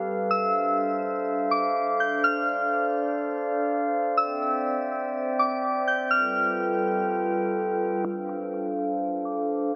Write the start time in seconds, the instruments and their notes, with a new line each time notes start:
Already playing: glass harmonica G3 G4 A4 B4 F5
0.31 glass harmonica D4 C5 E5, synth bell E6
1.51 synth bell D6
2.00 synth bell G6
2.24 glass harmonica D5, synth bell F6
4.17 glass harmonica C4 E5 G5, synth bell E6
5.39 synth bell D6
5.88 synth bell G6
6.11 glass harmonica G3 F4 A4 B4, synth bell F6
8.05 glass harmonica D4 A4 C5 F5, synth bell E6
9.25 synth bell D6